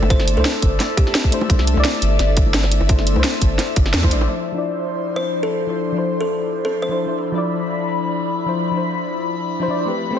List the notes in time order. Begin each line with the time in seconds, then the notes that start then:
Already playing: A3 D4 E4 A4 C5 D5 E5
0.02 G1, high bongo
0.09 A3 D4 E4 C5, kick, closed hi-hat
0.20 snare
0.28 closed hi-hat
0.34 C2 A3 D4 E4 A4, high bongo
0.40 C5
0.45 snare, closed hi-hat
0.62 G1, kick, closed hi-hat
0.80 snare, closed hi-hat, high bongo
0.97 G4, kick, closed hi-hat
1.07 snare
1.15 snare, closed hi-hat
1.24 kick
1.31 A3 D4 E4 C5, closed hi-hat
1.41 high bongo
1.48 C2 A3 D4 E4 C5, kick, closed hi-hat
1.59 snare
1.67 closed hi-hat
1.74 C2 A3 D4 E4, high bongo
1.80 D5
1.85 snare, closed hi-hat
2.02 G1, closed hi-hat
2.19 G1, snare, closed hi-hat
2.37 kick, closed hi-hat
2.46 high bongo
2.54 snare, closed hi-hat
2.63 snare, high bongo
2.72 closed hi-hat
2.81 G1, high bongo
2.88 A3 D4 E4 C5, kick, closed hi-hat
2.99 snare
3.07 closed hi-hat
3.13 C2 A3 D4, high bongo
3.17 E4 C5
3.24 snare, closed hi-hat
3.41 G1, kick, closed hi-hat
3.58 snare, closed hi-hat, high bongo
3.76 G1, kick, closed hi-hat
3.86 snare
3.94 E2, snare, closed hi-hat
4.02 A3 D4 E4 C5, kick, high bongo
4.10 A1 A3 D4 E4 D5, closed hi-hat
4.21 high bongo
4.27 F3 D4 E4 C5
4.52 F3 D4
4.56 E4 D5
5.16 C5
5.43 A4
5.67 F3 D4 E4 C5
5.92 F3 D4
5.96 E4 C5
6.21 A4
6.65 A4
6.82 C5
6.89 F3 D4 E4 C5
7.06 F3 D4 E4 C5 B5
7.32 F3 D4 E4
7.38 D5
8.46 F3 D4 E4 C5
8.71 F3 D4
8.75 E4 C5
9.60 F3 D4 E4 C5
9.68 F3 D4 E4 D5
9.85 G3 A3 C4 G4 A4 B4
10.11 A3 C4
10.15 G4